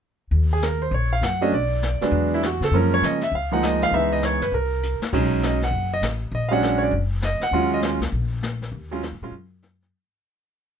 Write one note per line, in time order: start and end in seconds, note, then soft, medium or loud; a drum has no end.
0.31 0.89 D#2 medium
0.31 brush sweep soft
0.53 0.63 G#4 medium
0.62 0.81 A#4 medium
0.62 snare soft
0.62 hi-hat pedal soft
0.82 0.92 C5 medium
0.91 1.20 A#1 medium
0.91 1.12 C#5 medium
0.91 brush sweep soft
1.13 1.23 F5 medium
1.21 1.50 F#2 medium
1.21 1.42 F#5 medium
1.21 snare medium
1.21 hi-hat pedal medium
1.41 1.51 F#3 medium
1.41 1.52 A3 medium
1.41 1.52 C#4 medium
1.41 1.52 D4 medium
1.41 1.53 D#5 medium
1.52 1.98 B1 medium
1.52 1.99 D5 medium
1.52 brush sweep soft
1.83 snare medium
1.83 hi-hat pedal soft
2.01 2.40 F#3 soft
2.01 2.41 G#3 medium
2.01 2.41 B3 soft
2.01 2.41 D4 medium
2.01 muted upright bass stroke soft
2.01 snare soft
2.11 2.58 E2 medium
2.11 brush sweep soft
2.34 2.44 E4 medium
2.43 2.63 F#4 medium
2.43 snare medium
2.43 hi-hat pedal medium
2.61 2.70 C#3 medium
2.61 2.74 A4 medium
2.61 snare soft
2.71 3.00 F#2 medium
2.71 3.18 F3 soft
2.71 3.19 G#3 soft
2.71 3.19 A#3 soft
2.71 3.19 C#4 medium
2.71 brush sweep soft
2.76 2.93 A#4 medium
2.94 3.04 C#5 medium
3.02 3.30 C#3 medium
3.02 3.22 D#5 medium
3.02 snare soft
3.02 hi-hat pedal medium
3.21 3.33 E5 medium
3.21 snare soft
3.32 3.89 C#2 medium
3.32 3.52 F5 medium
3.32 brush sweep soft
3.52 3.90 F3 medium
3.52 3.91 G#3 medium
3.52 3.91 A#3 medium
3.52 3.91 D#4 medium
3.52 3.63 F#5 medium
3.63 3.82 D#5 medium
3.63 snare medium
3.63 hi-hat pedal medium
3.82 3.93 F5 loud
3.82 snare soft
3.91 4.37 C#2 medium
3.91 4.38 E3 soft
3.91 4.38 G#3 soft
3.91 4.38 B3 soft
3.91 4.38 D#4 medium
3.91 4.12 E5 medium
3.91 brush sweep soft
4.13 4.23 D#5 medium
4.23 4.42 C#5 medium
4.23 snare medium
4.23 hi-hat pedal soft
4.41 4.51 G2 medium
4.41 4.53 B4 medium
4.41 snare soft
4.52 4.97 C2 medium
4.52 4.99 A#4 medium
4.52 brush sweep soft
4.83 hi-hat pedal medium
5.00 muted upright bass stroke soft
5.00 snare medium
5.13 5.69 B1 medium
5.13 5.57 F#3 medium
5.13 5.58 G#3 medium
5.13 5.58 C#4 medium
5.13 5.58 D#4 medium
5.13 brush sweep soft
5.13 kick medium
5.13 crash medium
5.43 5.63 D#5 medium
5.43 snare medium
5.43 hi-hat pedal soft
5.62 5.90 F#5 medium
5.62 snare soft
5.71 5.99 F#1 medium
5.71 brush sweep soft
5.94 6.03 D#5 medium
6.01 6.29 A1 medium
6.01 snare medium
6.01 hi-hat pedal medium
6.32 6.89 A#1 medium
6.32 6.52 D#5 medium
6.32 brush sweep soft
6.49 6.90 F#3 medium
6.49 6.90 G#3 medium
6.49 6.90 C#4 medium
6.49 6.90 D4 medium
6.49 6.50 F5 medium
6.53 6.80 F#5 medium
6.63 snare soft
6.63 hi-hat pedal soft
6.78 6.80 C#5 medium
6.83 6.93 D5 medium
6.91 7.37 F#1 medium
6.91 brush sweep soft
7.22 7.42 D#5 medium
7.22 snare soft
7.22 hi-hat pedal soft
7.40 7.70 F#5 medium
7.40 muted upright bass stroke soft
7.40 snare soft
7.51 7.97 D#2 medium
7.51 7.98 F#3 medium
7.51 7.98 G#3 medium
7.51 7.98 C#4 medium
7.51 7.98 F4 medium
7.51 brush sweep soft
7.74 7.80 D#5 medium
7.83 snare soft
7.83 hi-hat pedal soft
8.00 8.11 C#2 medium
8.00 snare soft
8.12 8.69 A#1 medium
8.12 brush sweep medium
8.43 snare medium
8.43 hi-hat pedal medium
8.62 snare soft
8.72 9.09 D#2 medium
8.72 brush sweep soft
8.91 9.01 F#3 medium
8.91 9.02 G#3 medium
8.91 9.02 C#4 medium
8.91 9.02 F4 medium
9.03 snare soft
9.03 hi-hat pedal soft
9.12 9.21 G#2 medium
9.22 9.31 A#2 medium
9.22 9.32 F#3 medium
9.22 9.32 G#3 medium
9.22 9.33 C#4 medium
9.22 9.33 F4 medium
9.31 9.89 F#2 medium
9.31 brush sweep soft
9.63 snare medium
9.63 hi-hat pedal medium
9.82 snare soft